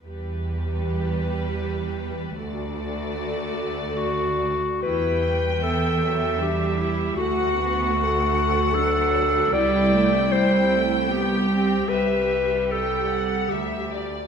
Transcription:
<<
  \new Staff \with { instrumentName = "Violin section" } { \time 3/4 \key e \minor \tempo 4 = 76 b'2. | d''2~ d''8. r16 | g''4 e''2 | fis''4 fis''2 |
g''2. | e''4 g''8 fis''8 e''8 d''8 | }
  \new Staff \with { instrumentName = "Clarinet" } { \time 3/4 \key e \minor r2. | r2 fis'4 | b'4 a'4 g'4 | fis'2 a'4 |
d''4 c''8 r8 g'4 | b'4 a'4 g'4 | }
  \new Staff \with { instrumentName = "Viola section" } { \time 3/4 \key e \minor << { g'2. | fis'2~ fis'8. r16 | e'8 g''4. d'8 e'8 | fis'4 a'4 d'4 |
e'4 e'4 g'4 | g'2~ g'8. r16 | } \\ { g2. | a2~ a8. r16 | g4 b8 fis8 g4 | a8 b8 a4 fis4 |
g8 a8 g8 a8 b8 c'8 | g2~ g8. r16 | } >> }
  \new Staff \with { instrumentName = "Cello section" } { \clef bass \time 3/4 \key e \minor e,2. | d,2~ d,8. r16 | e,2. | d,2. |
c,2. | c,2 d,8. r16 | }
>>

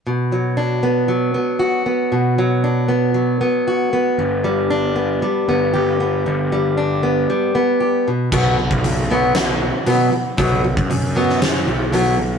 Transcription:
<<
  \new Staff \with { instrumentName = "Steel-string acoustic guitar" } { \clef bass \time 4/4 \key b \minor \tempo 4 = 116 b,8 fis8 d'8 b8 fis8 b8 fis'8 b8 | b,8 fis8 d'8 b8 fis8 b8 fis'8 b8 | g,8 g8 d'8 b8 g8 b8 g'8 b8 | g,8 g8 d'8 b8 g8 b8 g'8 b,8 |
<b, fis b>8 <b, fis>8 <b, fis>8 <b, fis b>8 <b, fis>8 <b, fis>8 <b, fis b>8 <b, fis>8 | <b, fis b>8 <b, fis>8 <b, fis>8 <b, fis b>8 <b, fis>8 <b, fis>8 <b, fis b>8 <b, fis>8 | }
  \new Staff \with { instrumentName = "Picked electric bass" } { \clef bass \time 4/4 \key b \minor r1 | r1 | g,,2 r8 g,,8 g,,4 | g,,2 r2 |
b,,8. b,,2 r4 r16 | b,,8. fis,4.~ fis,16 b,,4. | }
  \new DrumStaff \with { instrumentName = "Drums" } \drummode { \time 4/4 r4 r4 r4 r4 | r4 r4 r4 r4 | r4 r4 r4 r4 | r4 r4 r4 r4 |
<cymc bd>8. bd16 hho4 <hho sn>4 hho4 | <hho bd>8. bd16 hho8. sn16 <hho sn>4 hho4 | }
>>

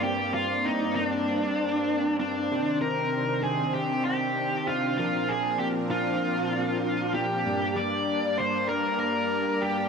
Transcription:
<<
  \new Staff \with { instrumentName = "Lead electric guitar" } { \time 4/4 \key g \minor \tempo 4 = 97 g'8 f'8 ees'8 d'2 d'8~ | d'8 bes'4 aes'8 g'8 g'4 f'8 | f'8 aes'8 g'8 f'2 g'8~ | g'8 d''4 c''8 bes'8 bes'4 g'8 | }
  \new Staff \with { instrumentName = "Supersaw synth" } { \time 4/4 \key g \minor <g, bes c' d''>1 | <c ees c' d' c''>1 | <bes, f c' bes'>1 | <g, g bes d''>1 | }
>>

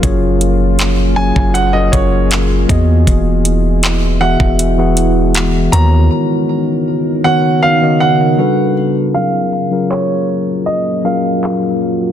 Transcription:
<<
  \new Staff \with { instrumentName = "Grand piano" } { \time 4/4 \key fis \major \tempo 4 = 79 r4. gis''8 fis''16 dis''16 cis''4 r8 | r4. fis''8 r4. ais''8 | r4. fis''8 eis''8 fis''4 r8 | eis''4 cis''4 dis''8 eis''4 r8 | }
  \new Staff \with { instrumentName = "Tine electric piano" } { \time 4/4 \key fis \major <fis cis' eis' gis' cis''>4~ <fis cis' eis' gis' cis''>16 r16 <fis cis' eis' gis' cis''>8. <fis cis' eis' gis' ais'>4~ <fis cis' eis' gis' ais'>16 <e b fis' gis' dis''>8~ | <e b fis' gis' dis''>4~ <e b fis' gis' dis''>16 r16 <e b fis' gis' e''>8. <e b fis' gis' fis''>4~ <e b fis' gis' fis''>16 <dis b fis' ais' cis''>8~ | <dis b fis' ais' cis''>4~ <dis b fis' ais' cis''>16 r16 <dis b fis' ais' cis''>8. <dis b fis' ais' dis''>8. <g d' fis' a' b'>4 | <fis cis' eis' gis' ais'>8. <fis cis' eis' gis' ais'>4. r16 <fis cis' eis' gis' ais'>4~ <fis cis' eis' gis' ais'>16 r16 | }
  \new Staff \with { instrumentName = "Ambient pad" } { \time 4/4 \key fis \major <ais eis' gis'>2.~ <ais eis' gis'>8 <e gis e'>8~ | <e gis e'>2.~ <e gis e'>8 <cis dis' ais'>8~ | <cis dis' ais'>2. r4 | <fis ais eis'>1 | }
  \new Staff \with { instrumentName = "808-style bass" } { \clef bass \time 4/4 \key fis \major fis,,4.~ fis,,16 fis,,8. fis,,4 e,8 | e,,4.~ e,,16 e,,4.~ e,,16 dis,8 | r1 | r1 | }
  \new DrumStaff \with { instrumentName = "Drums" } \drummode { \time 4/4 <hh bd>8 hh8 <hc hh>8. bd16 hh8 <hh bd>8 <hc hh>8 <hh bd>8 | <hh bd>8 hh8 <hc hh>8. bd16 hh8 hh8 <hc hh>8 hh8 | r4 r4 r4 r4 | hh8 hh8 <hc hh>4 hh8 hh8 <hc hh>8 hh8 | }
>>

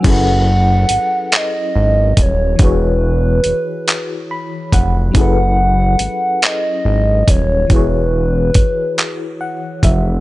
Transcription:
<<
  \new Staff \with { instrumentName = "Soft synth lead" } { \time 6/8 \key fis \dorian \tempo 4. = 47 fis''4. dis''4 cis''8 | b'2~ b'8 r8 | fis''4. dis''4 cis''8 | b'2~ b'8 r8 | }
  \new Staff \with { instrumentName = "FM electric piano" } { \time 6/8 \key fis \dorian << { r2. | r2 b''8 fis''8 | r2. | r2 fis''8 e''8 | } \\ { <fis cis' e' gis' a' b'>2. | <e e' fis' gis' cis''>2. | <fis cis' e' gis' a' b'>2. | <e e' fis' gis' cis''>2. | } >> }
  \new Staff \with { instrumentName = "Analog synth bass" } { \clef bass \time 6/8 \key fis \dorian fis,,4 gis,,8 r8 gis,,8 dis,,8 | e,,4 f,,8 r4 f,,8 | fis,,4 gis,,8 r8 gis,,8 dis,,8 | e,,4 f,,8 r4 f,,8 | }
  \new DrumStaff \with { instrumentName = "Drums" } \drummode { \time 6/8 <cymc hh bd>4 hh8 <hc hh>4 <hh bd>8 | <hh bd>4 hh8 <hc hh>4 <hh bd>8 | <hh bd>4 hh8 <hc hh>4 <hh bd>8 | <hh bd>4 <hh bd>8 <hc hh>4 <hh bd>8 | }
>>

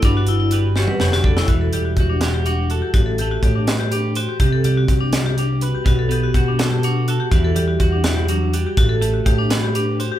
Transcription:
<<
  \new Staff \with { instrumentName = "Clean electric guitar" } { \time 6/8 \key e \minor \tempo 4. = 82 << { <g d' fis' b'>4 b'8 fis'8 b'8 d'8 | r4 fis'8 g'8 fis'8 a'8 | r4 g'8 b'8 g'8 c''8 | r4 g'8 d''8 g'8 b'8 |
r4 fis'8 a'8 fis'8 a'8 | r4 fis'2 | r4 g'8 b'8 g'8 c''8 | } \\ { g,4 g4 d4 | e8 g2~ g8 | a,8 a2~ a8 | c8 g2~ g8 |
b,8 b2~ b8 | e8 g4 e8 fis8 g8 | a,8 a2~ a8 | } >> }
  \new Staff \with { instrumentName = "Vibraphone" } { \time 6/8 \key e \minor d'16 fis'16 e'16 e'16 fis'8 g'16 b'16 g'16 fis'16 a'16 e'16 | fis'16 a'16 g'16 fis'16 g'16 d'16 fis'16 g'16 d'8 fis'16 g'16 | fis'16 a'16 g'16 fis'16 g'16 d'16 fis'16 g'16 d'8 fis'16 g'16 | g'16 a'16 g'16 fis'16 g'16 d'16 fis'16 g'16 d'8 fis'16 g'16 |
fis'16 a'16 g'16 fis'16 g'16 d'16 fis'16 g'16 d'8 fis'16 g'16 | fis'16 a'16 g'16 fis'16 g'16 d'16 fis'16 g'16 d'8 fis'16 g'16 | fis'16 a'16 g'16 fis'16 g'16 d'16 fis'16 g'16 d'8 fis'16 g'16 | }
  \new Staff \with { instrumentName = "Picked electric bass" } { \clef bass \time 6/8 \key e \minor g,,2 f,,4 | e,,8 e,,8 e,,2 | a,,4 a,2 | c,8 c,8 c,2 |
b,,4 b,2 | e,8 e,8 e,2 | a,,4 a,2 | }
  \new DrumStaff \with { instrumentName = "Drums" } \drummode { \time 6/8 <hh bd>8 hh8 hh8 sn16 tommh16 sn16 sn16 bd16 sn16 | <hh bd>8 hh8 <hh bd>8 <hh sn>8 hh8 hh8 | <hh bd>8 hh8 <hh bd>8 <hh sn>8 hh8 hh8 | <hh bd>8 hh8 <hh bd>8 <hh sn>8 hh8 hh8 |
<hh bd>8 hh8 <hh bd>8 <hh sn>8 hh8 hh8 | <hh bd>8 hh8 <hh bd>8 <hh sn>8 hh8 hh8 | <hh bd>8 hh8 <hh bd>8 <hh sn>8 hh8 hh8 | }
>>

